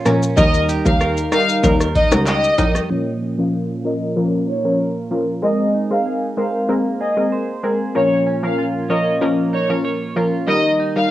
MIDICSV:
0, 0, Header, 1, 6, 480
1, 0, Start_track
1, 0, Tempo, 631579
1, 285, Time_signature, 4, 2, 24, 8
1, 8442, End_track
2, 0, Start_track
2, 0, Title_t, "Violin section"
2, 0, Program_c, 0, 48
2, 284, Note_on_c, 0, 75, 107
2, 392, Note_off_c, 0, 75, 0
2, 652, Note_on_c, 0, 77, 88
2, 747, Note_off_c, 0, 77, 0
2, 1005, Note_on_c, 0, 77, 85
2, 1113, Note_off_c, 0, 77, 0
2, 1485, Note_on_c, 0, 75, 83
2, 1593, Note_off_c, 0, 75, 0
2, 1725, Note_on_c, 0, 75, 87
2, 2070, Note_off_c, 0, 75, 0
2, 2205, Note_on_c, 0, 73, 107
2, 2312, Note_off_c, 0, 73, 0
2, 2573, Note_on_c, 0, 77, 74
2, 2668, Note_off_c, 0, 77, 0
2, 2925, Note_on_c, 0, 75, 76
2, 3033, Note_off_c, 0, 75, 0
2, 3406, Note_on_c, 0, 73, 87
2, 3513, Note_off_c, 0, 73, 0
2, 4125, Note_on_c, 0, 75, 103
2, 4232, Note_off_c, 0, 75, 0
2, 4493, Note_on_c, 0, 77, 76
2, 4588, Note_off_c, 0, 77, 0
2, 4845, Note_on_c, 0, 77, 76
2, 4953, Note_off_c, 0, 77, 0
2, 5326, Note_on_c, 0, 75, 78
2, 5433, Note_off_c, 0, 75, 0
2, 6046, Note_on_c, 0, 73, 104
2, 6153, Note_off_c, 0, 73, 0
2, 6413, Note_on_c, 0, 77, 75
2, 6508, Note_off_c, 0, 77, 0
2, 6765, Note_on_c, 0, 75, 75
2, 6873, Note_off_c, 0, 75, 0
2, 7246, Note_on_c, 0, 73, 78
2, 7353, Note_off_c, 0, 73, 0
2, 7964, Note_on_c, 0, 75, 101
2, 8072, Note_off_c, 0, 75, 0
2, 8333, Note_on_c, 0, 77, 78
2, 8428, Note_off_c, 0, 77, 0
2, 8442, End_track
3, 0, Start_track
3, 0, Title_t, "Clean electric guitar"
3, 0, Program_c, 1, 27
3, 0, Note_on_c, 1, 46, 84
3, 0, Note_on_c, 1, 65, 65
3, 0, Note_on_c, 1, 73, 74
3, 44, Note_on_c, 1, 61, 67
3, 284, Note_off_c, 1, 46, 0
3, 284, Note_off_c, 1, 73, 0
3, 284, Note_on_c, 1, 51, 84
3, 288, Note_on_c, 1, 70, 70
3, 335, Note_off_c, 1, 61, 0
3, 335, Note_off_c, 1, 65, 0
3, 523, Note_on_c, 1, 67, 65
3, 762, Note_off_c, 1, 70, 0
3, 765, Note_on_c, 1, 70, 73
3, 1004, Note_on_c, 1, 63, 63
3, 1241, Note_off_c, 1, 70, 0
3, 1244, Note_on_c, 1, 70, 71
3, 1475, Note_off_c, 1, 63, 0
3, 1484, Note_on_c, 1, 63, 64
3, 1715, Note_off_c, 1, 67, 0
3, 1724, Note_on_c, 1, 67, 65
3, 1956, Note_off_c, 1, 63, 0
3, 1965, Note_on_c, 1, 63, 66
3, 2204, Note_off_c, 1, 51, 0
3, 2205, Note_on_c, 1, 46, 76
3, 2255, Note_off_c, 1, 67, 0
3, 2256, Note_off_c, 1, 63, 0
3, 2444, Note_on_c, 1, 61, 60
3, 2684, Note_on_c, 1, 65, 57
3, 2921, Note_off_c, 1, 70, 0
3, 2924, Note_on_c, 1, 70, 63
3, 3164, Note_on_c, 1, 58, 68
3, 3401, Note_off_c, 1, 65, 0
3, 3404, Note_on_c, 1, 63, 57
3, 3532, Note_off_c, 1, 63, 0
3, 3532, Note_on_c, 1, 65, 49
3, 3641, Note_off_c, 1, 70, 0
3, 3644, Note_on_c, 1, 70, 67
3, 3874, Note_off_c, 1, 65, 0
3, 3884, Note_on_c, 1, 65, 59
3, 4124, Note_on_c, 1, 56, 76
3, 4125, Note_off_c, 1, 46, 0
3, 4175, Note_off_c, 1, 61, 0
3, 4175, Note_off_c, 1, 65, 0
3, 4364, Note_on_c, 1, 63, 58
3, 4604, Note_on_c, 1, 68, 59
3, 4627, Note_off_c, 1, 58, 0
3, 4627, Note_off_c, 1, 70, 0
3, 4844, Note_on_c, 1, 72, 64
3, 5084, Note_on_c, 1, 58, 70
3, 5316, Note_off_c, 1, 68, 0
3, 5325, Note_on_c, 1, 68, 60
3, 5556, Note_off_c, 1, 72, 0
3, 5565, Note_on_c, 1, 72, 68
3, 5796, Note_off_c, 1, 68, 0
3, 5805, Note_on_c, 1, 68, 61
3, 6044, Note_off_c, 1, 56, 0
3, 6044, Note_on_c, 1, 46, 79
3, 6095, Note_off_c, 1, 63, 0
3, 6096, Note_off_c, 1, 68, 0
3, 6096, Note_off_c, 1, 72, 0
3, 6283, Note_on_c, 1, 61, 56
3, 6523, Note_on_c, 1, 65, 60
3, 6764, Note_on_c, 1, 73, 65
3, 7001, Note_off_c, 1, 58, 0
3, 7004, Note_on_c, 1, 58, 69
3, 7241, Note_off_c, 1, 65, 0
3, 7244, Note_on_c, 1, 63, 56
3, 7372, Note_off_c, 1, 63, 0
3, 7372, Note_on_c, 1, 65, 48
3, 7475, Note_off_c, 1, 73, 0
3, 7484, Note_on_c, 1, 73, 68
3, 7716, Note_off_c, 1, 65, 0
3, 7725, Note_on_c, 1, 65, 61
3, 7965, Note_off_c, 1, 46, 0
3, 7965, Note_on_c, 1, 51, 79
3, 8015, Note_off_c, 1, 61, 0
3, 8015, Note_off_c, 1, 73, 0
3, 8016, Note_off_c, 1, 65, 0
3, 8205, Note_on_c, 1, 63, 58
3, 8442, Note_off_c, 1, 51, 0
3, 8442, Note_off_c, 1, 58, 0
3, 8442, Note_off_c, 1, 63, 0
3, 8442, End_track
4, 0, Start_track
4, 0, Title_t, "Synth pluck"
4, 0, Program_c, 2, 84
4, 40, Note_on_c, 2, 53, 79
4, 42, Note_on_c, 2, 61, 73
4, 45, Note_on_c, 2, 70, 90
4, 152, Note_off_c, 2, 53, 0
4, 153, Note_off_c, 2, 61, 0
4, 154, Note_off_c, 2, 70, 0
4, 282, Note_on_c, 2, 55, 95
4, 283, Note_on_c, 2, 63, 88
4, 286, Note_on_c, 2, 70, 100
4, 620, Note_off_c, 2, 55, 0
4, 621, Note_off_c, 2, 63, 0
4, 622, Note_off_c, 2, 70, 0
4, 649, Note_on_c, 2, 55, 76
4, 651, Note_on_c, 2, 63, 73
4, 653, Note_on_c, 2, 70, 87
4, 976, Note_off_c, 2, 55, 0
4, 977, Note_off_c, 2, 63, 0
4, 978, Note_off_c, 2, 70, 0
4, 1002, Note_on_c, 2, 55, 83
4, 1005, Note_on_c, 2, 63, 73
4, 1007, Note_on_c, 2, 70, 91
4, 1225, Note_off_c, 2, 55, 0
4, 1227, Note_off_c, 2, 63, 0
4, 1228, Note_off_c, 2, 70, 0
4, 1242, Note_on_c, 2, 55, 102
4, 1244, Note_on_c, 2, 63, 94
4, 1247, Note_on_c, 2, 70, 111
4, 1353, Note_off_c, 2, 55, 0
4, 1354, Note_off_c, 2, 63, 0
4, 1355, Note_off_c, 2, 70, 0
4, 1608, Note_on_c, 2, 55, 75
4, 1611, Note_on_c, 2, 63, 72
4, 1613, Note_on_c, 2, 70, 90
4, 1707, Note_off_c, 2, 55, 0
4, 1708, Note_off_c, 2, 63, 0
4, 1709, Note_off_c, 2, 70, 0
4, 1962, Note_on_c, 2, 55, 77
4, 1964, Note_on_c, 2, 63, 76
4, 1966, Note_on_c, 2, 70, 86
4, 2072, Note_off_c, 2, 55, 0
4, 2074, Note_off_c, 2, 63, 0
4, 2075, Note_off_c, 2, 70, 0
4, 2202, Note_on_c, 2, 53, 90
4, 2204, Note_on_c, 2, 61, 81
4, 2206, Note_on_c, 2, 70, 103
4, 2540, Note_off_c, 2, 53, 0
4, 2541, Note_off_c, 2, 61, 0
4, 2542, Note_off_c, 2, 70, 0
4, 2570, Note_on_c, 2, 53, 77
4, 2573, Note_on_c, 2, 61, 69
4, 2575, Note_on_c, 2, 70, 82
4, 2897, Note_off_c, 2, 53, 0
4, 2898, Note_off_c, 2, 61, 0
4, 2899, Note_off_c, 2, 70, 0
4, 2923, Note_on_c, 2, 53, 74
4, 2925, Note_on_c, 2, 61, 71
4, 2928, Note_on_c, 2, 70, 84
4, 3146, Note_off_c, 2, 53, 0
4, 3147, Note_off_c, 2, 61, 0
4, 3148, Note_off_c, 2, 70, 0
4, 3163, Note_on_c, 2, 53, 99
4, 3166, Note_on_c, 2, 61, 88
4, 3167, Note_on_c, 2, 70, 105
4, 3501, Note_off_c, 2, 53, 0
4, 3502, Note_off_c, 2, 61, 0
4, 3503, Note_off_c, 2, 70, 0
4, 3529, Note_on_c, 2, 53, 76
4, 3532, Note_on_c, 2, 61, 70
4, 3534, Note_on_c, 2, 70, 86
4, 3627, Note_off_c, 2, 53, 0
4, 3629, Note_off_c, 2, 61, 0
4, 3630, Note_off_c, 2, 70, 0
4, 3882, Note_on_c, 2, 53, 76
4, 3884, Note_on_c, 2, 61, 70
4, 3887, Note_on_c, 2, 70, 84
4, 3993, Note_off_c, 2, 53, 0
4, 3994, Note_off_c, 2, 61, 0
4, 3995, Note_off_c, 2, 70, 0
4, 4120, Note_on_c, 2, 56, 88
4, 4123, Note_on_c, 2, 60, 79
4, 4125, Note_on_c, 2, 70, 98
4, 4459, Note_off_c, 2, 56, 0
4, 4460, Note_off_c, 2, 60, 0
4, 4462, Note_off_c, 2, 70, 0
4, 4488, Note_on_c, 2, 56, 77
4, 4491, Note_on_c, 2, 60, 69
4, 4493, Note_on_c, 2, 70, 80
4, 4816, Note_off_c, 2, 56, 0
4, 4817, Note_off_c, 2, 60, 0
4, 4818, Note_off_c, 2, 70, 0
4, 4841, Note_on_c, 2, 56, 77
4, 4843, Note_on_c, 2, 60, 70
4, 4846, Note_on_c, 2, 70, 86
4, 5065, Note_off_c, 2, 56, 0
4, 5066, Note_off_c, 2, 60, 0
4, 5067, Note_off_c, 2, 70, 0
4, 5081, Note_on_c, 2, 56, 99
4, 5084, Note_on_c, 2, 60, 88
4, 5086, Note_on_c, 2, 70, 101
4, 5192, Note_off_c, 2, 56, 0
4, 5193, Note_off_c, 2, 60, 0
4, 5194, Note_off_c, 2, 70, 0
4, 5448, Note_on_c, 2, 56, 74
4, 5450, Note_on_c, 2, 60, 67
4, 5453, Note_on_c, 2, 70, 82
4, 5547, Note_off_c, 2, 56, 0
4, 5548, Note_off_c, 2, 60, 0
4, 5549, Note_off_c, 2, 70, 0
4, 5801, Note_on_c, 2, 56, 77
4, 5804, Note_on_c, 2, 60, 69
4, 5806, Note_on_c, 2, 70, 85
4, 5912, Note_off_c, 2, 56, 0
4, 5913, Note_off_c, 2, 60, 0
4, 5914, Note_off_c, 2, 70, 0
4, 6042, Note_on_c, 2, 53, 87
4, 6044, Note_on_c, 2, 61, 84
4, 6046, Note_on_c, 2, 70, 96
4, 6380, Note_off_c, 2, 53, 0
4, 6381, Note_off_c, 2, 61, 0
4, 6382, Note_off_c, 2, 70, 0
4, 6408, Note_on_c, 2, 53, 74
4, 6411, Note_on_c, 2, 61, 68
4, 6413, Note_on_c, 2, 70, 80
4, 6736, Note_off_c, 2, 53, 0
4, 6737, Note_off_c, 2, 61, 0
4, 6738, Note_off_c, 2, 70, 0
4, 6763, Note_on_c, 2, 53, 77
4, 6765, Note_on_c, 2, 61, 71
4, 6767, Note_on_c, 2, 70, 88
4, 6986, Note_off_c, 2, 53, 0
4, 6987, Note_off_c, 2, 61, 0
4, 6988, Note_off_c, 2, 70, 0
4, 7002, Note_on_c, 2, 53, 93
4, 7005, Note_on_c, 2, 61, 91
4, 7007, Note_on_c, 2, 70, 109
4, 7340, Note_off_c, 2, 53, 0
4, 7342, Note_off_c, 2, 61, 0
4, 7343, Note_off_c, 2, 70, 0
4, 7370, Note_on_c, 2, 53, 76
4, 7372, Note_on_c, 2, 61, 67
4, 7374, Note_on_c, 2, 70, 85
4, 7468, Note_off_c, 2, 53, 0
4, 7469, Note_off_c, 2, 61, 0
4, 7470, Note_off_c, 2, 70, 0
4, 7723, Note_on_c, 2, 53, 77
4, 7725, Note_on_c, 2, 61, 74
4, 7728, Note_on_c, 2, 70, 84
4, 7833, Note_off_c, 2, 53, 0
4, 7834, Note_off_c, 2, 61, 0
4, 7836, Note_off_c, 2, 70, 0
4, 7962, Note_on_c, 2, 55, 87
4, 7965, Note_on_c, 2, 63, 82
4, 7967, Note_on_c, 2, 70, 99
4, 8300, Note_off_c, 2, 55, 0
4, 8301, Note_off_c, 2, 63, 0
4, 8303, Note_off_c, 2, 70, 0
4, 8330, Note_on_c, 2, 55, 75
4, 8333, Note_on_c, 2, 63, 72
4, 8335, Note_on_c, 2, 70, 83
4, 8442, Note_off_c, 2, 55, 0
4, 8442, Note_off_c, 2, 63, 0
4, 8442, Note_off_c, 2, 70, 0
4, 8442, End_track
5, 0, Start_track
5, 0, Title_t, "Cello"
5, 0, Program_c, 3, 42
5, 44, Note_on_c, 3, 46, 90
5, 141, Note_off_c, 3, 46, 0
5, 285, Note_on_c, 3, 39, 118
5, 563, Note_off_c, 3, 39, 0
5, 651, Note_on_c, 3, 39, 102
5, 918, Note_off_c, 3, 39, 0
5, 1244, Note_on_c, 3, 39, 115
5, 1522, Note_off_c, 3, 39, 0
5, 1611, Note_on_c, 3, 37, 97
5, 1697, Note_off_c, 3, 37, 0
5, 1964, Note_on_c, 3, 41, 85
5, 2145, Note_off_c, 3, 41, 0
5, 8442, End_track
6, 0, Start_track
6, 0, Title_t, "Drums"
6, 43, Note_on_c, 9, 37, 99
6, 43, Note_on_c, 9, 82, 50
6, 46, Note_off_c, 9, 82, 0
6, 46, Note_on_c, 9, 42, 85
6, 46, Note_on_c, 9, 82, 62
6, 119, Note_off_c, 9, 37, 0
6, 122, Note_off_c, 9, 42, 0
6, 122, Note_off_c, 9, 82, 0
6, 172, Note_on_c, 9, 82, 65
6, 173, Note_off_c, 9, 82, 0
6, 173, Note_on_c, 9, 82, 77
6, 249, Note_off_c, 9, 82, 0
6, 284, Note_on_c, 9, 82, 78
6, 285, Note_off_c, 9, 82, 0
6, 285, Note_on_c, 9, 36, 127
6, 285, Note_on_c, 9, 82, 84
6, 361, Note_off_c, 9, 36, 0
6, 361, Note_off_c, 9, 82, 0
6, 411, Note_on_c, 9, 82, 52
6, 412, Note_off_c, 9, 82, 0
6, 412, Note_on_c, 9, 82, 54
6, 488, Note_off_c, 9, 82, 0
6, 524, Note_on_c, 9, 82, 60
6, 526, Note_off_c, 9, 82, 0
6, 526, Note_on_c, 9, 42, 83
6, 526, Note_on_c, 9, 82, 57
6, 602, Note_off_c, 9, 42, 0
6, 602, Note_off_c, 9, 82, 0
6, 651, Note_on_c, 9, 36, 98
6, 652, Note_on_c, 9, 82, 67
6, 727, Note_off_c, 9, 36, 0
6, 728, Note_off_c, 9, 82, 0
6, 765, Note_on_c, 9, 37, 100
6, 765, Note_on_c, 9, 82, 82
6, 841, Note_off_c, 9, 37, 0
6, 841, Note_off_c, 9, 82, 0
6, 892, Note_on_c, 9, 82, 62
6, 968, Note_off_c, 9, 82, 0
6, 1004, Note_on_c, 9, 37, 107
6, 1004, Note_on_c, 9, 42, 78
6, 1004, Note_on_c, 9, 82, 57
6, 1006, Note_off_c, 9, 82, 0
6, 1006, Note_on_c, 9, 82, 51
6, 1080, Note_off_c, 9, 37, 0
6, 1080, Note_off_c, 9, 42, 0
6, 1082, Note_off_c, 9, 82, 0
6, 1131, Note_on_c, 9, 82, 77
6, 1133, Note_off_c, 9, 82, 0
6, 1133, Note_on_c, 9, 82, 74
6, 1209, Note_off_c, 9, 82, 0
6, 1243, Note_on_c, 9, 82, 63
6, 1244, Note_off_c, 9, 82, 0
6, 1244, Note_on_c, 9, 36, 104
6, 1244, Note_on_c, 9, 82, 81
6, 1320, Note_off_c, 9, 36, 0
6, 1320, Note_off_c, 9, 82, 0
6, 1369, Note_on_c, 9, 82, 58
6, 1372, Note_on_c, 9, 37, 92
6, 1375, Note_off_c, 9, 82, 0
6, 1375, Note_on_c, 9, 82, 55
6, 1448, Note_off_c, 9, 37, 0
6, 1451, Note_off_c, 9, 82, 0
6, 1484, Note_on_c, 9, 36, 105
6, 1486, Note_on_c, 9, 42, 71
6, 1486, Note_on_c, 9, 82, 51
6, 1560, Note_off_c, 9, 36, 0
6, 1562, Note_off_c, 9, 42, 0
6, 1562, Note_off_c, 9, 82, 0
6, 1609, Note_on_c, 9, 65, 91
6, 1609, Note_on_c, 9, 82, 91
6, 1610, Note_off_c, 9, 82, 0
6, 1610, Note_on_c, 9, 82, 84
6, 1611, Note_on_c, 9, 37, 104
6, 1685, Note_off_c, 9, 65, 0
6, 1686, Note_off_c, 9, 82, 0
6, 1687, Note_off_c, 9, 37, 0
6, 1722, Note_on_c, 9, 82, 80
6, 1723, Note_off_c, 9, 82, 0
6, 1723, Note_on_c, 9, 82, 74
6, 1724, Note_on_c, 9, 39, 90
6, 1799, Note_off_c, 9, 82, 0
6, 1800, Note_off_c, 9, 39, 0
6, 1851, Note_on_c, 9, 82, 53
6, 1855, Note_off_c, 9, 82, 0
6, 1855, Note_on_c, 9, 82, 56
6, 1931, Note_off_c, 9, 82, 0
6, 1962, Note_on_c, 9, 65, 73
6, 1962, Note_on_c, 9, 82, 50
6, 1964, Note_off_c, 9, 82, 0
6, 1964, Note_on_c, 9, 36, 89
6, 1964, Note_on_c, 9, 42, 81
6, 1964, Note_on_c, 9, 82, 61
6, 2038, Note_off_c, 9, 65, 0
6, 2040, Note_off_c, 9, 36, 0
6, 2040, Note_off_c, 9, 42, 0
6, 2040, Note_off_c, 9, 82, 0
6, 2090, Note_on_c, 9, 37, 87
6, 2090, Note_on_c, 9, 82, 64
6, 2094, Note_off_c, 9, 82, 0
6, 2094, Note_on_c, 9, 82, 75
6, 2166, Note_off_c, 9, 37, 0
6, 2170, Note_off_c, 9, 82, 0
6, 8442, End_track
0, 0, End_of_file